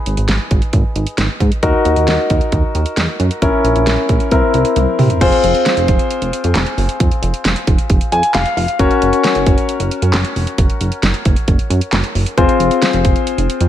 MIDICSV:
0, 0, Header, 1, 4, 480
1, 0, Start_track
1, 0, Tempo, 447761
1, 1746, Time_signature, 4, 2, 24, 8
1, 14670, End_track
2, 0, Start_track
2, 0, Title_t, "Grand piano"
2, 0, Program_c, 0, 0
2, 0, Note_on_c, 0, 63, 76
2, 0, Note_on_c, 0, 68, 70
2, 0, Note_on_c, 0, 71, 83
2, 1702, Note_off_c, 0, 71, 0
2, 1703, Note_off_c, 0, 63, 0
2, 1703, Note_off_c, 0, 68, 0
2, 1744, Note_on_c, 0, 66, 71
2, 1744, Note_on_c, 0, 70, 84
2, 1745, Note_on_c, 0, 63, 80
2, 3626, Note_off_c, 0, 70, 0
2, 3627, Note_off_c, 0, 63, 0
2, 3627, Note_off_c, 0, 66, 0
2, 3665, Note_on_c, 0, 64, 71
2, 3666, Note_on_c, 0, 61, 75
2, 3666, Note_on_c, 0, 70, 85
2, 4606, Note_off_c, 0, 64, 0
2, 4607, Note_off_c, 0, 61, 0
2, 4607, Note_off_c, 0, 70, 0
2, 4626, Note_on_c, 0, 60, 73
2, 4626, Note_on_c, 0, 64, 70
2, 4626, Note_on_c, 0, 70, 85
2, 5567, Note_off_c, 0, 60, 0
2, 5567, Note_off_c, 0, 64, 0
2, 5567, Note_off_c, 0, 70, 0
2, 5586, Note_on_c, 0, 60, 80
2, 5586, Note_on_c, 0, 68, 71
2, 5586, Note_on_c, 0, 72, 90
2, 5587, Note_on_c, 0, 65, 74
2, 8706, Note_on_c, 0, 80, 75
2, 8929, Note_off_c, 0, 80, 0
2, 8946, Note_on_c, 0, 77, 77
2, 9169, Note_off_c, 0, 77, 0
2, 9185, Note_on_c, 0, 77, 71
2, 9383, Note_off_c, 0, 60, 0
2, 9383, Note_off_c, 0, 65, 0
2, 9383, Note_off_c, 0, 68, 0
2, 9383, Note_off_c, 0, 72, 0
2, 9409, Note_off_c, 0, 77, 0
2, 9426, Note_on_c, 0, 61, 82
2, 9426, Note_on_c, 0, 66, 75
2, 9426, Note_on_c, 0, 70, 75
2, 9427, Note_on_c, 0, 73, 88
2, 13223, Note_off_c, 0, 61, 0
2, 13223, Note_off_c, 0, 66, 0
2, 13223, Note_off_c, 0, 70, 0
2, 13224, Note_off_c, 0, 73, 0
2, 13267, Note_on_c, 0, 72, 85
2, 13268, Note_on_c, 0, 60, 80
2, 13268, Note_on_c, 0, 65, 72
2, 13268, Note_on_c, 0, 68, 72
2, 14670, Note_off_c, 0, 60, 0
2, 14670, Note_off_c, 0, 65, 0
2, 14670, Note_off_c, 0, 68, 0
2, 14670, Note_off_c, 0, 72, 0
2, 14670, End_track
3, 0, Start_track
3, 0, Title_t, "Analog synth bass"
3, 0, Program_c, 1, 38
3, 67, Note_on_c, 1, 32, 96
3, 177, Note_off_c, 1, 32, 0
3, 187, Note_on_c, 1, 32, 98
3, 297, Note_off_c, 1, 32, 0
3, 307, Note_on_c, 1, 32, 103
3, 416, Note_off_c, 1, 32, 0
3, 547, Note_on_c, 1, 32, 101
3, 657, Note_off_c, 1, 32, 0
3, 786, Note_on_c, 1, 32, 112
3, 896, Note_off_c, 1, 32, 0
3, 1028, Note_on_c, 1, 32, 101
3, 1137, Note_off_c, 1, 32, 0
3, 1267, Note_on_c, 1, 32, 107
3, 1377, Note_off_c, 1, 32, 0
3, 1505, Note_on_c, 1, 44, 94
3, 1615, Note_off_c, 1, 44, 0
3, 1746, Note_on_c, 1, 39, 117
3, 1856, Note_off_c, 1, 39, 0
3, 1986, Note_on_c, 1, 39, 97
3, 2096, Note_off_c, 1, 39, 0
3, 2107, Note_on_c, 1, 39, 101
3, 2216, Note_off_c, 1, 39, 0
3, 2225, Note_on_c, 1, 39, 99
3, 2336, Note_off_c, 1, 39, 0
3, 2468, Note_on_c, 1, 39, 105
3, 2577, Note_off_c, 1, 39, 0
3, 2706, Note_on_c, 1, 39, 106
3, 2816, Note_off_c, 1, 39, 0
3, 2948, Note_on_c, 1, 39, 103
3, 3057, Note_off_c, 1, 39, 0
3, 3187, Note_on_c, 1, 40, 98
3, 3296, Note_off_c, 1, 40, 0
3, 3427, Note_on_c, 1, 42, 94
3, 3537, Note_off_c, 1, 42, 0
3, 3667, Note_on_c, 1, 34, 105
3, 3776, Note_off_c, 1, 34, 0
3, 3906, Note_on_c, 1, 34, 96
3, 4016, Note_off_c, 1, 34, 0
3, 4026, Note_on_c, 1, 34, 104
3, 4136, Note_off_c, 1, 34, 0
3, 4148, Note_on_c, 1, 34, 101
3, 4257, Note_off_c, 1, 34, 0
3, 4388, Note_on_c, 1, 34, 101
3, 4497, Note_off_c, 1, 34, 0
3, 4626, Note_on_c, 1, 36, 109
3, 4736, Note_off_c, 1, 36, 0
3, 4867, Note_on_c, 1, 36, 104
3, 4976, Note_off_c, 1, 36, 0
3, 5106, Note_on_c, 1, 36, 104
3, 5216, Note_off_c, 1, 36, 0
3, 5347, Note_on_c, 1, 48, 97
3, 5456, Note_off_c, 1, 48, 0
3, 5587, Note_on_c, 1, 29, 106
3, 5696, Note_off_c, 1, 29, 0
3, 5827, Note_on_c, 1, 29, 97
3, 5936, Note_off_c, 1, 29, 0
3, 6186, Note_on_c, 1, 29, 101
3, 6296, Note_off_c, 1, 29, 0
3, 6307, Note_on_c, 1, 29, 108
3, 6417, Note_off_c, 1, 29, 0
3, 6666, Note_on_c, 1, 29, 100
3, 6776, Note_off_c, 1, 29, 0
3, 6905, Note_on_c, 1, 41, 100
3, 7015, Note_off_c, 1, 41, 0
3, 7024, Note_on_c, 1, 29, 105
3, 7135, Note_off_c, 1, 29, 0
3, 7265, Note_on_c, 1, 30, 101
3, 7376, Note_off_c, 1, 30, 0
3, 7506, Note_on_c, 1, 29, 109
3, 7616, Note_off_c, 1, 29, 0
3, 7744, Note_on_c, 1, 29, 106
3, 7855, Note_off_c, 1, 29, 0
3, 7985, Note_on_c, 1, 29, 104
3, 8095, Note_off_c, 1, 29, 0
3, 8227, Note_on_c, 1, 29, 100
3, 8336, Note_off_c, 1, 29, 0
3, 8467, Note_on_c, 1, 29, 111
3, 8577, Note_off_c, 1, 29, 0
3, 8706, Note_on_c, 1, 41, 104
3, 8816, Note_off_c, 1, 41, 0
3, 8949, Note_on_c, 1, 29, 108
3, 9057, Note_off_c, 1, 29, 0
3, 9186, Note_on_c, 1, 29, 102
3, 9296, Note_off_c, 1, 29, 0
3, 9427, Note_on_c, 1, 30, 105
3, 9536, Note_off_c, 1, 30, 0
3, 9666, Note_on_c, 1, 30, 96
3, 9776, Note_off_c, 1, 30, 0
3, 10028, Note_on_c, 1, 30, 101
3, 10137, Note_off_c, 1, 30, 0
3, 10148, Note_on_c, 1, 30, 114
3, 10257, Note_off_c, 1, 30, 0
3, 10506, Note_on_c, 1, 30, 105
3, 10616, Note_off_c, 1, 30, 0
3, 10744, Note_on_c, 1, 42, 94
3, 10855, Note_off_c, 1, 42, 0
3, 10864, Note_on_c, 1, 30, 103
3, 10975, Note_off_c, 1, 30, 0
3, 11104, Note_on_c, 1, 29, 89
3, 11215, Note_off_c, 1, 29, 0
3, 11345, Note_on_c, 1, 30, 107
3, 11455, Note_off_c, 1, 30, 0
3, 11584, Note_on_c, 1, 30, 91
3, 11695, Note_off_c, 1, 30, 0
3, 11824, Note_on_c, 1, 30, 109
3, 11935, Note_off_c, 1, 30, 0
3, 12067, Note_on_c, 1, 30, 108
3, 12177, Note_off_c, 1, 30, 0
3, 12306, Note_on_c, 1, 30, 113
3, 12416, Note_off_c, 1, 30, 0
3, 12545, Note_on_c, 1, 42, 105
3, 12656, Note_off_c, 1, 42, 0
3, 12785, Note_on_c, 1, 30, 110
3, 12895, Note_off_c, 1, 30, 0
3, 13025, Note_on_c, 1, 30, 100
3, 13135, Note_off_c, 1, 30, 0
3, 13267, Note_on_c, 1, 29, 109
3, 13376, Note_off_c, 1, 29, 0
3, 13506, Note_on_c, 1, 29, 96
3, 13616, Note_off_c, 1, 29, 0
3, 13867, Note_on_c, 1, 29, 95
3, 13977, Note_off_c, 1, 29, 0
3, 13987, Note_on_c, 1, 29, 108
3, 14096, Note_off_c, 1, 29, 0
3, 14344, Note_on_c, 1, 29, 102
3, 14455, Note_off_c, 1, 29, 0
3, 14586, Note_on_c, 1, 41, 97
3, 14670, Note_off_c, 1, 41, 0
3, 14670, End_track
4, 0, Start_track
4, 0, Title_t, "Drums"
4, 66, Note_on_c, 9, 42, 77
4, 174, Note_off_c, 9, 42, 0
4, 185, Note_on_c, 9, 42, 52
4, 293, Note_off_c, 9, 42, 0
4, 304, Note_on_c, 9, 42, 80
4, 306, Note_on_c, 9, 38, 113
4, 411, Note_off_c, 9, 42, 0
4, 413, Note_off_c, 9, 38, 0
4, 545, Note_on_c, 9, 42, 77
4, 547, Note_on_c, 9, 36, 94
4, 652, Note_off_c, 9, 42, 0
4, 654, Note_off_c, 9, 36, 0
4, 663, Note_on_c, 9, 42, 49
4, 770, Note_off_c, 9, 42, 0
4, 782, Note_on_c, 9, 42, 79
4, 786, Note_on_c, 9, 36, 93
4, 889, Note_off_c, 9, 42, 0
4, 893, Note_off_c, 9, 36, 0
4, 1025, Note_on_c, 9, 42, 71
4, 1132, Note_off_c, 9, 42, 0
4, 1142, Note_on_c, 9, 42, 58
4, 1250, Note_off_c, 9, 42, 0
4, 1263, Note_on_c, 9, 42, 78
4, 1265, Note_on_c, 9, 38, 114
4, 1370, Note_off_c, 9, 42, 0
4, 1372, Note_off_c, 9, 38, 0
4, 1505, Note_on_c, 9, 36, 89
4, 1507, Note_on_c, 9, 42, 61
4, 1612, Note_off_c, 9, 36, 0
4, 1614, Note_off_c, 9, 42, 0
4, 1626, Note_on_c, 9, 42, 57
4, 1733, Note_off_c, 9, 42, 0
4, 1744, Note_on_c, 9, 42, 88
4, 1746, Note_on_c, 9, 36, 112
4, 1852, Note_off_c, 9, 42, 0
4, 1853, Note_off_c, 9, 36, 0
4, 1986, Note_on_c, 9, 42, 79
4, 2094, Note_off_c, 9, 42, 0
4, 2105, Note_on_c, 9, 42, 53
4, 2212, Note_off_c, 9, 42, 0
4, 2224, Note_on_c, 9, 42, 82
4, 2227, Note_on_c, 9, 38, 115
4, 2331, Note_off_c, 9, 42, 0
4, 2334, Note_off_c, 9, 38, 0
4, 2465, Note_on_c, 9, 42, 75
4, 2467, Note_on_c, 9, 36, 95
4, 2573, Note_off_c, 9, 42, 0
4, 2575, Note_off_c, 9, 36, 0
4, 2584, Note_on_c, 9, 42, 50
4, 2691, Note_off_c, 9, 42, 0
4, 2703, Note_on_c, 9, 42, 74
4, 2706, Note_on_c, 9, 36, 89
4, 2810, Note_off_c, 9, 42, 0
4, 2814, Note_off_c, 9, 36, 0
4, 2947, Note_on_c, 9, 42, 70
4, 3054, Note_off_c, 9, 42, 0
4, 3063, Note_on_c, 9, 42, 57
4, 3170, Note_off_c, 9, 42, 0
4, 3183, Note_on_c, 9, 42, 79
4, 3185, Note_on_c, 9, 38, 112
4, 3290, Note_off_c, 9, 42, 0
4, 3292, Note_off_c, 9, 38, 0
4, 3428, Note_on_c, 9, 42, 63
4, 3535, Note_off_c, 9, 42, 0
4, 3546, Note_on_c, 9, 42, 57
4, 3653, Note_off_c, 9, 42, 0
4, 3667, Note_on_c, 9, 36, 117
4, 3667, Note_on_c, 9, 42, 85
4, 3774, Note_off_c, 9, 36, 0
4, 3774, Note_off_c, 9, 42, 0
4, 3909, Note_on_c, 9, 42, 79
4, 4016, Note_off_c, 9, 42, 0
4, 4027, Note_on_c, 9, 42, 51
4, 4134, Note_off_c, 9, 42, 0
4, 4145, Note_on_c, 9, 42, 81
4, 4148, Note_on_c, 9, 38, 114
4, 4252, Note_off_c, 9, 42, 0
4, 4255, Note_off_c, 9, 38, 0
4, 4386, Note_on_c, 9, 42, 74
4, 4387, Note_on_c, 9, 36, 97
4, 4493, Note_off_c, 9, 42, 0
4, 4494, Note_off_c, 9, 36, 0
4, 4504, Note_on_c, 9, 42, 49
4, 4611, Note_off_c, 9, 42, 0
4, 4625, Note_on_c, 9, 42, 77
4, 4627, Note_on_c, 9, 36, 86
4, 4732, Note_off_c, 9, 42, 0
4, 4734, Note_off_c, 9, 36, 0
4, 4866, Note_on_c, 9, 42, 68
4, 4974, Note_off_c, 9, 42, 0
4, 4984, Note_on_c, 9, 42, 57
4, 5091, Note_off_c, 9, 42, 0
4, 5104, Note_on_c, 9, 42, 82
4, 5106, Note_on_c, 9, 48, 58
4, 5211, Note_off_c, 9, 42, 0
4, 5213, Note_off_c, 9, 48, 0
4, 5347, Note_on_c, 9, 45, 89
4, 5349, Note_on_c, 9, 46, 63
4, 5454, Note_off_c, 9, 45, 0
4, 5456, Note_off_c, 9, 46, 0
4, 5467, Note_on_c, 9, 42, 56
4, 5467, Note_on_c, 9, 43, 92
4, 5574, Note_off_c, 9, 42, 0
4, 5574, Note_off_c, 9, 43, 0
4, 5587, Note_on_c, 9, 36, 120
4, 5588, Note_on_c, 9, 42, 94
4, 5588, Note_on_c, 9, 49, 106
4, 5694, Note_off_c, 9, 36, 0
4, 5695, Note_off_c, 9, 42, 0
4, 5695, Note_off_c, 9, 49, 0
4, 5708, Note_on_c, 9, 42, 58
4, 5815, Note_off_c, 9, 42, 0
4, 5828, Note_on_c, 9, 42, 87
4, 5936, Note_off_c, 9, 42, 0
4, 5946, Note_on_c, 9, 42, 52
4, 6053, Note_off_c, 9, 42, 0
4, 6065, Note_on_c, 9, 42, 84
4, 6068, Note_on_c, 9, 38, 121
4, 6172, Note_off_c, 9, 42, 0
4, 6175, Note_off_c, 9, 38, 0
4, 6186, Note_on_c, 9, 42, 51
4, 6293, Note_off_c, 9, 42, 0
4, 6306, Note_on_c, 9, 42, 77
4, 6307, Note_on_c, 9, 36, 101
4, 6413, Note_off_c, 9, 42, 0
4, 6414, Note_off_c, 9, 36, 0
4, 6425, Note_on_c, 9, 42, 53
4, 6532, Note_off_c, 9, 42, 0
4, 6545, Note_on_c, 9, 42, 81
4, 6652, Note_off_c, 9, 42, 0
4, 6667, Note_on_c, 9, 42, 54
4, 6774, Note_off_c, 9, 42, 0
4, 6788, Note_on_c, 9, 42, 72
4, 6896, Note_off_c, 9, 42, 0
4, 6904, Note_on_c, 9, 42, 61
4, 7011, Note_off_c, 9, 42, 0
4, 7024, Note_on_c, 9, 42, 84
4, 7027, Note_on_c, 9, 38, 120
4, 7027, Note_on_c, 9, 39, 97
4, 7131, Note_off_c, 9, 42, 0
4, 7134, Note_off_c, 9, 38, 0
4, 7134, Note_off_c, 9, 39, 0
4, 7144, Note_on_c, 9, 42, 52
4, 7251, Note_off_c, 9, 42, 0
4, 7268, Note_on_c, 9, 46, 67
4, 7375, Note_off_c, 9, 46, 0
4, 7386, Note_on_c, 9, 42, 58
4, 7493, Note_off_c, 9, 42, 0
4, 7506, Note_on_c, 9, 36, 123
4, 7506, Note_on_c, 9, 42, 93
4, 7613, Note_off_c, 9, 42, 0
4, 7614, Note_off_c, 9, 36, 0
4, 7627, Note_on_c, 9, 42, 60
4, 7734, Note_off_c, 9, 42, 0
4, 7747, Note_on_c, 9, 42, 86
4, 7854, Note_off_c, 9, 42, 0
4, 7866, Note_on_c, 9, 42, 55
4, 7973, Note_off_c, 9, 42, 0
4, 7984, Note_on_c, 9, 42, 85
4, 7987, Note_on_c, 9, 38, 122
4, 8091, Note_off_c, 9, 42, 0
4, 8094, Note_off_c, 9, 38, 0
4, 8104, Note_on_c, 9, 42, 51
4, 8211, Note_off_c, 9, 42, 0
4, 8226, Note_on_c, 9, 42, 77
4, 8227, Note_on_c, 9, 36, 97
4, 8333, Note_off_c, 9, 42, 0
4, 8334, Note_off_c, 9, 36, 0
4, 8345, Note_on_c, 9, 42, 52
4, 8452, Note_off_c, 9, 42, 0
4, 8465, Note_on_c, 9, 42, 81
4, 8467, Note_on_c, 9, 36, 97
4, 8572, Note_off_c, 9, 42, 0
4, 8574, Note_off_c, 9, 36, 0
4, 8586, Note_on_c, 9, 42, 54
4, 8693, Note_off_c, 9, 42, 0
4, 8707, Note_on_c, 9, 42, 76
4, 8814, Note_off_c, 9, 42, 0
4, 8823, Note_on_c, 9, 42, 58
4, 8931, Note_off_c, 9, 42, 0
4, 8944, Note_on_c, 9, 42, 84
4, 8947, Note_on_c, 9, 38, 115
4, 8947, Note_on_c, 9, 39, 98
4, 9052, Note_off_c, 9, 42, 0
4, 9054, Note_off_c, 9, 38, 0
4, 9054, Note_off_c, 9, 39, 0
4, 9065, Note_on_c, 9, 42, 52
4, 9172, Note_off_c, 9, 42, 0
4, 9190, Note_on_c, 9, 46, 65
4, 9298, Note_off_c, 9, 46, 0
4, 9308, Note_on_c, 9, 42, 59
4, 9415, Note_off_c, 9, 42, 0
4, 9427, Note_on_c, 9, 36, 116
4, 9427, Note_on_c, 9, 42, 96
4, 9534, Note_off_c, 9, 36, 0
4, 9534, Note_off_c, 9, 42, 0
4, 9548, Note_on_c, 9, 42, 60
4, 9656, Note_off_c, 9, 42, 0
4, 9668, Note_on_c, 9, 42, 86
4, 9776, Note_off_c, 9, 42, 0
4, 9787, Note_on_c, 9, 42, 56
4, 9894, Note_off_c, 9, 42, 0
4, 9906, Note_on_c, 9, 42, 85
4, 9909, Note_on_c, 9, 38, 123
4, 10013, Note_off_c, 9, 42, 0
4, 10016, Note_off_c, 9, 38, 0
4, 10024, Note_on_c, 9, 42, 49
4, 10131, Note_off_c, 9, 42, 0
4, 10146, Note_on_c, 9, 42, 78
4, 10147, Note_on_c, 9, 36, 101
4, 10253, Note_off_c, 9, 42, 0
4, 10254, Note_off_c, 9, 36, 0
4, 10266, Note_on_c, 9, 42, 53
4, 10373, Note_off_c, 9, 42, 0
4, 10385, Note_on_c, 9, 42, 81
4, 10493, Note_off_c, 9, 42, 0
4, 10505, Note_on_c, 9, 42, 55
4, 10612, Note_off_c, 9, 42, 0
4, 10628, Note_on_c, 9, 42, 73
4, 10735, Note_off_c, 9, 42, 0
4, 10744, Note_on_c, 9, 42, 62
4, 10851, Note_off_c, 9, 42, 0
4, 10863, Note_on_c, 9, 42, 83
4, 10865, Note_on_c, 9, 38, 117
4, 10865, Note_on_c, 9, 39, 98
4, 10970, Note_off_c, 9, 42, 0
4, 10973, Note_off_c, 9, 38, 0
4, 10973, Note_off_c, 9, 39, 0
4, 10983, Note_on_c, 9, 42, 53
4, 11090, Note_off_c, 9, 42, 0
4, 11108, Note_on_c, 9, 46, 66
4, 11215, Note_off_c, 9, 46, 0
4, 11225, Note_on_c, 9, 42, 58
4, 11333, Note_off_c, 9, 42, 0
4, 11345, Note_on_c, 9, 42, 93
4, 11346, Note_on_c, 9, 36, 121
4, 11452, Note_off_c, 9, 42, 0
4, 11453, Note_off_c, 9, 36, 0
4, 11466, Note_on_c, 9, 42, 61
4, 11574, Note_off_c, 9, 42, 0
4, 11585, Note_on_c, 9, 42, 84
4, 11692, Note_off_c, 9, 42, 0
4, 11704, Note_on_c, 9, 42, 53
4, 11811, Note_off_c, 9, 42, 0
4, 11823, Note_on_c, 9, 42, 81
4, 11825, Note_on_c, 9, 38, 122
4, 11930, Note_off_c, 9, 42, 0
4, 11932, Note_off_c, 9, 38, 0
4, 11943, Note_on_c, 9, 42, 50
4, 12050, Note_off_c, 9, 42, 0
4, 12064, Note_on_c, 9, 42, 80
4, 12066, Note_on_c, 9, 36, 100
4, 12171, Note_off_c, 9, 42, 0
4, 12173, Note_off_c, 9, 36, 0
4, 12182, Note_on_c, 9, 42, 52
4, 12289, Note_off_c, 9, 42, 0
4, 12304, Note_on_c, 9, 42, 81
4, 12306, Note_on_c, 9, 36, 91
4, 12411, Note_off_c, 9, 42, 0
4, 12413, Note_off_c, 9, 36, 0
4, 12425, Note_on_c, 9, 42, 54
4, 12532, Note_off_c, 9, 42, 0
4, 12548, Note_on_c, 9, 42, 73
4, 12655, Note_off_c, 9, 42, 0
4, 12664, Note_on_c, 9, 42, 59
4, 12772, Note_off_c, 9, 42, 0
4, 12783, Note_on_c, 9, 42, 83
4, 12786, Note_on_c, 9, 38, 122
4, 12786, Note_on_c, 9, 39, 96
4, 12890, Note_off_c, 9, 42, 0
4, 12893, Note_off_c, 9, 38, 0
4, 12893, Note_off_c, 9, 39, 0
4, 12904, Note_on_c, 9, 42, 51
4, 13011, Note_off_c, 9, 42, 0
4, 13028, Note_on_c, 9, 46, 65
4, 13136, Note_off_c, 9, 46, 0
4, 13147, Note_on_c, 9, 42, 58
4, 13254, Note_off_c, 9, 42, 0
4, 13267, Note_on_c, 9, 36, 124
4, 13267, Note_on_c, 9, 42, 93
4, 13374, Note_off_c, 9, 36, 0
4, 13374, Note_off_c, 9, 42, 0
4, 13388, Note_on_c, 9, 42, 60
4, 13495, Note_off_c, 9, 42, 0
4, 13509, Note_on_c, 9, 42, 83
4, 13616, Note_off_c, 9, 42, 0
4, 13626, Note_on_c, 9, 42, 55
4, 13733, Note_off_c, 9, 42, 0
4, 13745, Note_on_c, 9, 42, 86
4, 13748, Note_on_c, 9, 38, 122
4, 13852, Note_off_c, 9, 42, 0
4, 13855, Note_off_c, 9, 38, 0
4, 13865, Note_on_c, 9, 42, 50
4, 13972, Note_off_c, 9, 42, 0
4, 13986, Note_on_c, 9, 42, 78
4, 13988, Note_on_c, 9, 36, 97
4, 14093, Note_off_c, 9, 42, 0
4, 14095, Note_off_c, 9, 36, 0
4, 14105, Note_on_c, 9, 42, 52
4, 14212, Note_off_c, 9, 42, 0
4, 14225, Note_on_c, 9, 42, 80
4, 14332, Note_off_c, 9, 42, 0
4, 14347, Note_on_c, 9, 42, 53
4, 14454, Note_off_c, 9, 42, 0
4, 14469, Note_on_c, 9, 42, 75
4, 14576, Note_off_c, 9, 42, 0
4, 14585, Note_on_c, 9, 42, 60
4, 14670, Note_off_c, 9, 42, 0
4, 14670, End_track
0, 0, End_of_file